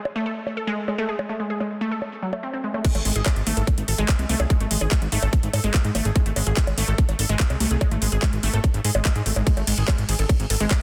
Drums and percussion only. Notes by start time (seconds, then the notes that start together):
0.05 high bongo
0.47 high bongo
0.88 high bongo
1.19 high bongo
1.60 high bongo
2.02 high bongo
2.33 high bongo
2.74 high bongo
2.85 kick, closed hi-hat, crash
2.95 closed hi-hat, high bongo
3.05 open hi-hat
3.16 closed hi-hat
3.26 kick, clap, closed hi-hat, high bongo
3.36 closed hi-hat
3.47 open hi-hat
3.57 closed hi-hat
3.67 kick, closed hi-hat, high bongo
3.78 closed hi-hat
3.88 open hi-hat
3.98 closed hi-hat
4.09 kick, clap, closed hi-hat, high bongo
4.19 closed hi-hat
4.29 open hi-hat
4.40 closed hi-hat, high bongo
4.50 kick, closed hi-hat
4.60 closed hi-hat
4.71 open hi-hat
4.81 high bongo
4.91 kick, clap, closed hi-hat
5.02 closed hi-hat
5.12 open hi-hat
5.23 closed hi-hat, high bongo
5.33 kick, closed hi-hat
5.43 closed hi-hat
5.53 open hi-hat, high bongo
5.64 closed hi-hat
5.74 kick, clap, closed hi-hat
5.85 closed hi-hat
5.95 open hi-hat, high bongo
6.05 closed hi-hat
6.16 kick, closed hi-hat
6.26 closed hi-hat
6.36 open hi-hat, high bongo
6.47 closed hi-hat
6.57 kick, clap, closed hi-hat
6.67 closed hi-hat, high bongo
6.78 open hi-hat
6.88 closed hi-hat
6.98 kick, closed hi-hat
7.09 closed hi-hat, high bongo
7.19 open hi-hat
7.29 closed hi-hat
7.40 kick, clap, closed hi-hat
7.50 closed hi-hat, high bongo
7.60 open hi-hat
7.71 closed hi-hat
7.81 kick, closed hi-hat, high bongo
7.91 closed hi-hat
8.02 open hi-hat
8.12 closed hi-hat
8.22 kick, clap, closed hi-hat, high bongo
8.33 closed hi-hat
8.43 open hi-hat
8.54 closed hi-hat
8.64 kick, closed hi-hat, high bongo
8.74 closed hi-hat
8.85 open hi-hat
8.95 high bongo
9.05 kick, clap, closed hi-hat
9.16 closed hi-hat
9.26 open hi-hat
9.36 closed hi-hat, high bongo
9.47 kick, closed hi-hat, ride
9.57 closed hi-hat, high bongo
9.67 open hi-hat, ride
9.78 closed hi-hat
9.88 kick, clap, closed hi-hat, ride, high bongo
9.98 closed hi-hat
10.09 open hi-hat, ride
10.19 closed hi-hat
10.29 kick, closed hi-hat, ride, high bongo
10.40 closed hi-hat
10.50 open hi-hat, ride
10.60 closed hi-hat
10.71 kick, clap, closed hi-hat, ride, high bongo